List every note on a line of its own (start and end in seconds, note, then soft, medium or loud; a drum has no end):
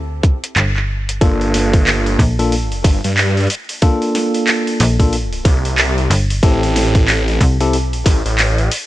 0.00 0.22 D2 loud
0.23 kick loud
0.23 closed hi-hat soft
0.44 closed hi-hat soft
0.56 1.19 G1 loud
0.56 clap loud
0.56 closed hi-hat medium
0.76 clap soft
1.09 closed hi-hat medium
1.21 2.17 G1 loud
1.21 2.34 A#3 medium
1.21 2.34 D4 medium
1.21 2.34 F4 medium
1.21 2.34 A4 medium
1.21 kick loud
1.21 open hi-hat soft
1.41 open hi-hat soft
1.54 snare soft
1.54 open hi-hat medium
1.73 kick loud
1.73 open hi-hat soft
1.87 clap loud
1.87 open hi-hat soft
2.06 open hi-hat soft
2.19 2.82 A#1 loud
2.19 kick medium
2.19 open hi-hat medium
2.39 2.54 A#3 medium
2.39 2.54 D4 medium
2.39 2.54 F4 medium
2.39 2.54 A4 medium
2.39 open hi-hat soft
2.52 open hi-hat soft
2.72 open hi-hat soft
2.84 3.01 G1 loud
2.84 kick loud
2.84 open hi-hat medium
3.04 3.48 G2 medium
3.04 open hi-hat soft
3.17 clap loud
3.17 open hi-hat soft
3.37 open hi-hat soft
3.40 open hi-hat soft
3.44 open hi-hat soft
3.47 open hi-hat soft
3.50 open hi-hat medium
3.55 open hi-hat soft
3.64 open hi-hat soft
3.69 open hi-hat soft
3.82 4.95 A#3 medium
3.82 4.95 D4 medium
3.82 4.95 F4 medium
3.82 4.95 A4 medium
3.82 kick loud
3.82 open hi-hat soft
4.02 open hi-hat soft
4.15 snare soft
4.15 open hi-hat medium
4.34 open hi-hat soft
4.47 clap loud
4.47 open hi-hat soft
4.67 open hi-hat soft
4.80 5.44 A#1 loud
4.80 open hi-hat medium
5.00 5.15 A#3 medium
5.00 5.15 D4 medium
5.00 5.15 F4 medium
5.00 5.15 A4 medium
5.00 kick medium
5.00 open hi-hat soft
5.13 open hi-hat soft
5.33 open hi-hat soft
5.45 6.08 C2 loud
5.45 kick loud
5.45 open hi-hat medium
5.65 open hi-hat soft
5.78 clap loud
5.78 open hi-hat soft
5.98 open hi-hat soft
6.10 6.41 G1 loud
6.10 open hi-hat medium
6.30 open hi-hat soft
6.43 7.39 A1 loud
6.43 7.56 C4 medium
6.43 7.56 E4 medium
6.43 7.56 G4 medium
6.43 7.56 A4 medium
6.43 kick loud
6.43 open hi-hat soft
6.63 open hi-hat soft
6.76 snare soft
6.76 open hi-hat medium
6.95 kick loud
6.95 open hi-hat soft
7.08 clap loud
7.08 open hi-hat soft
7.28 open hi-hat soft
7.41 7.86 C2 loud
7.41 kick medium
7.41 open hi-hat medium
7.61 7.76 C4 medium
7.61 7.76 E4 medium
7.61 7.76 G4 medium
7.61 7.76 A4 medium
7.61 open hi-hat soft
7.73 open hi-hat soft
7.86 8.04 B1 loud
7.93 open hi-hat soft
8.06 8.23 A1 loud
8.06 kick loud
8.06 open hi-hat medium
8.26 8.69 A1 loud
8.26 open hi-hat soft
8.38 clap loud
8.38 open hi-hat soft
8.58 open hi-hat soft
8.71 open hi-hat medium